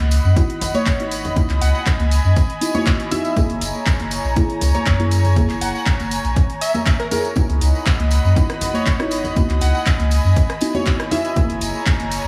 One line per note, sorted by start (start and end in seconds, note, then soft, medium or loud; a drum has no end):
0.00 0.19 C#2 medium
0.00 0.33 B3 medium
0.00 0.34 D#4 medium
0.00 0.34 E4 medium
0.00 0.34 F#4 medium
0.00 3.32 D#5 medium
0.00 1.34 F#5 medium
0.00 3.32 B5 medium
0.11 open hi-hat loud
0.11 tambourine medium
0.25 0.34 F#2 medium
0.25 tambourine soft
0.36 0.96 B3 medium
0.36 0.96 D#4 medium
0.36 0.97 E4 medium
0.36 0.97 F#4 medium
0.36 kick loud
0.36 closed hi-hat medium
0.36 tambourine medium
0.50 closed hi-hat medium
0.61 0.72 G#1 medium
0.61 open hi-hat loud
0.61 tambourine medium
0.61 low conga loud
0.74 1.25 C#5 medium
0.74 closed hi-hat soft
0.74 tambourine soft
0.74 high conga medium
0.86 1.45 G#1 medium
0.86 kick loud
0.86 clap loud
0.86 closed hi-hat medium
0.86 tambourine medium
0.99 1.33 B3 medium
0.99 1.34 D#4 medium
0.99 1.34 E4 medium
0.99 1.34 F#4 loud
0.99 closed hi-hat medium
1.11 open hi-hat loud
1.11 tambourine medium
1.25 closed hi-hat soft
1.25 low conga medium
1.36 2.58 B3 medium
1.36 2.59 D#4 medium
1.36 2.59 E4 medium
1.36 2.59 F#4 medium
1.36 3.34 G#5 medium
1.36 kick loud
1.36 closed hi-hat medium
1.36 tambourine medium
1.36 high conga medium
1.36 low conga loud
1.50 1.59 C#2 loud
1.50 clap soft
1.50 closed hi-hat medium
1.61 1.72 C#2 loud
1.61 1.70 F#5 medium
1.61 open hi-hat loud
1.61 tambourine loud
1.75 1.82 F#5 medium
1.75 tambourine soft
1.86 kick loud
1.86 clap loud
1.86 closed hi-hat medium
1.86 tambourine medium
2.00 2.19 C#2 loud
2.00 closed hi-hat medium
2.00 high conga medium
2.11 open hi-hat loud
2.11 tambourine medium
2.25 2.34 F#2 medium
2.25 tambourine soft
2.36 kick loud
2.36 closed hi-hat medium
2.36 tambourine medium
2.50 closed hi-hat medium
2.61 2.71 B3 medium
2.61 2.72 D#4 medium
2.61 2.72 E4 medium
2.61 2.72 F#4 medium
2.61 open hi-hat loud
2.61 tambourine medium
2.74 3.08 B3 medium
2.74 3.09 D#4 medium
2.74 3.09 E4 medium
2.74 3.09 F#4 loud
2.74 2.87 C#5 medium
2.74 closed hi-hat soft
2.74 tambourine soft
2.74 high conga medium
2.74 low conga medium
2.86 kick loud
2.86 clap loud
2.86 closed hi-hat medium
2.86 tambourine medium
3.00 closed hi-hat medium
3.11 3.33 B3 loud
3.11 3.33 D#4 medium
3.11 3.33 E4 medium
3.11 3.33 F#4 loud
3.11 3.42 E5 medium
3.11 open hi-hat loud
3.11 tambourine loud
3.11 low conga medium
3.24 closed hi-hat soft
3.24 tambourine soft
3.36 4.33 A#3 medium
3.36 4.34 E4 medium
3.36 4.34 G#4 medium
3.36 7.33 C#5 medium
3.36 7.33 G#5 medium
3.36 7.33 A#5 medium
3.36 kick loud
3.36 closed hi-hat medium
3.36 tambourine medium
3.36 high conga loud
3.36 low conga medium
3.50 3.59 F#1 medium
3.50 closed hi-hat soft
3.61 3.72 F#1 loud
3.61 open hi-hat loud
3.61 tambourine loud
3.75 tambourine soft
3.86 kick loud
3.86 clap loud
3.86 closed hi-hat medium
3.86 tambourine medium
4.00 4.19 F#1 medium
4.00 closed hi-hat soft
4.00 high conga medium
4.11 open hi-hat loud
4.11 tambourine medium
4.25 4.34 A#1 medium
4.25 tambourine soft
4.36 4.96 A#3 medium
4.36 4.97 E4 medium
4.36 4.97 G#4 medium
4.36 kick loud
4.36 closed hi-hat medium
4.36 tambourine medium
4.50 closed hi-hat soft
4.61 4.72 C#2 loud
4.61 open hi-hat loud
4.61 tambourine medium
4.61 low conga loud
4.75 5.25 C#5 medium
4.75 closed hi-hat soft
4.75 tambourine soft
4.75 high conga loud
4.86 5.45 F#2 medium
4.86 kick loud
4.86 clap loud
4.86 closed hi-hat medium
4.86 tambourine medium
4.99 5.33 A#3 medium
4.99 5.34 E4 medium
4.99 5.34 G#4 medium
4.99 closed hi-hat medium
5.11 open hi-hat loud
5.11 tambourine medium
5.25 closed hi-hat soft
5.25 tambourine soft
5.25 low conga medium
5.36 6.58 A#3 medium
5.36 6.59 E4 medium
5.36 6.59 G#4 medium
5.36 kick loud
5.36 closed hi-hat medium
5.36 tambourine soft
5.36 high conga loud
5.36 low conga medium
5.50 5.59 F#1 medium
5.50 clap soft
5.50 closed hi-hat soft
5.50 tambourine soft
5.61 5.72 F#1 medium
5.61 5.70 F#5 medium
5.61 open hi-hat loud
5.61 tambourine medium
5.75 5.82 F#5 medium
5.75 tambourine soft
5.86 kick loud
5.86 clap loud
5.86 closed hi-hat medium
5.86 tambourine medium
6.00 6.19 F#1 medium
6.00 closed hi-hat soft
6.00 tambourine soft
6.00 high conga medium
6.11 open hi-hat loud
6.11 tambourine medium
6.25 6.34 A#1 medium
6.25 closed hi-hat soft
6.25 tambourine soft
6.36 kick loud
6.36 closed hi-hat medium
6.36 tambourine medium
6.50 closed hi-hat soft
6.61 6.75 E5 medium
6.61 open hi-hat loud
6.61 tambourine medium
6.74 closed hi-hat soft
6.74 tambourine soft
6.74 high conga medium
6.74 low conga medium
6.86 kick loud
6.86 clap loud
6.86 closed hi-hat medium
6.86 tambourine medium
7.00 7.07 A#4 medium
7.00 closed hi-hat soft
7.11 7.26 A#3 loud
7.11 7.26 E4 medium
7.11 7.27 G#4 loud
7.11 7.20 A#4 medium
7.11 open hi-hat loud
7.11 tambourine medium
7.11 low conga medium
7.25 closed hi-hat soft
7.25 tambourine soft
7.36 8.33 B3 medium
7.36 8.34 D#4 medium
7.36 8.34 E4 medium
7.36 8.34 F#4 medium
7.36 11.32 D#5 medium
7.36 9.34 F#5 medium
7.36 11.32 B5 medium
7.36 kick loud
7.36 closed hi-hat medium
7.36 tambourine medium
7.36 high conga medium
7.36 low conga medium
7.50 7.59 C#2 medium
7.50 closed hi-hat soft
7.61 7.72 C#2 loud
7.61 open hi-hat loud
7.61 tambourine medium
7.75 tambourine soft
7.86 kick loud
7.86 clap loud
7.86 closed hi-hat medium
7.86 tambourine medium
8.00 8.19 C#2 loud
8.00 closed hi-hat soft
8.00 high conga medium
8.11 open hi-hat loud
8.11 tambourine medium
8.25 8.34 F#2 medium
8.25 tambourine soft
8.36 8.96 B3 medium
8.36 8.96 D#4 medium
8.36 8.97 E4 medium
8.36 8.97 F#4 medium
8.36 kick loud
8.36 closed hi-hat medium
8.36 tambourine medium
8.50 cross-stick medium
8.50 closed hi-hat medium
8.61 8.72 G#1 medium
8.61 open hi-hat loud
8.61 tambourine medium
8.61 low conga medium
8.74 9.25 C#5 medium
8.74 closed hi-hat soft
8.74 tambourine soft
8.74 high conga medium
8.86 9.45 G#1 medium
8.86 kick loud
8.86 clap loud
8.86 closed hi-hat medium
8.86 tambourine soft
8.99 9.33 B3 medium
8.99 9.34 D#4 medium
8.99 9.34 E4 medium
8.99 9.34 F#4 medium
8.99 cross-stick medium
8.99 closed hi-hat medium
9.11 open hi-hat loud
9.11 tambourine medium
9.24 closed hi-hat soft
9.24 tambourine soft
9.24 low conga medium
9.36 10.58 B3 medium
9.36 10.59 D#4 medium
9.36 10.59 E4 medium
9.36 10.59 F#4 medium
9.36 12.28 G#5 medium
9.36 kick loud
9.36 closed hi-hat medium
9.36 tambourine soft
9.36 high conga medium
9.36 low conga medium
9.50 9.59 C#2 medium
9.50 clap soft
9.50 closed hi-hat medium
9.61 9.72 C#2 medium
9.61 9.70 F#5 medium
9.61 open hi-hat loud
9.61 tambourine medium
9.75 9.82 F#5 medium
9.75 tambourine soft
9.86 kick loud
9.86 clap loud
9.86 closed hi-hat medium
9.86 tambourine soft
9.99 10.19 C#2 medium
9.99 closed hi-hat soft
9.99 high conga medium
10.11 open hi-hat loud
10.11 tambourine medium
10.25 10.34 F#2 medium
10.25 tambourine soft
10.36 kick loud
10.36 closed hi-hat medium
10.36 tambourine medium
10.50 cross-stick medium
10.50 closed hi-hat soft
10.61 10.71 B3 medium
10.61 10.72 D#4 medium
10.61 10.72 E4 medium
10.61 10.72 F#4 medium
10.61 open hi-hat loud
10.61 tambourine medium
10.74 11.09 B3 medium
10.74 11.09 D#4 medium
10.74 11.09 E4 medium
10.74 11.09 F#4 loud
10.74 10.87 C#5 medium
10.74 closed hi-hat soft
10.74 tambourine soft
10.74 high conga medium
10.74 low conga medium
10.86 kick loud
10.86 clap loud
10.86 closed hi-hat medium
10.86 tambourine soft
11.00 cross-stick medium
11.00 closed hi-hat medium
11.11 11.33 B3 loud
11.11 11.33 D#4 medium
11.11 11.33 E4 medium
11.11 11.33 F#4 loud
11.11 11.42 E5 medium
11.11 open hi-hat loud
11.11 tambourine medium
11.11 low conga medium
11.25 closed hi-hat soft
11.25 tambourine soft
11.36 12.28 A#3 medium
11.36 12.28 E4 medium
11.36 12.28 G#4 medium
11.36 12.28 C#5 medium
11.36 12.28 A#5 medium
11.36 kick loud
11.36 closed hi-hat medium
11.36 tambourine soft
11.36 high conga medium
11.36 low conga medium
11.50 11.59 F#1 loud
11.50 closed hi-hat medium
11.61 11.72 F#1 medium
11.61 open hi-hat loud
11.61 tambourine medium
11.75 tambourine soft
11.86 kick loud
11.86 clap loud
11.86 closed hi-hat medium
11.86 tambourine soft
12.00 12.19 F#1 medium
12.00 closed hi-hat medium
12.00 high conga medium
12.12 open hi-hat loud
12.12 tambourine medium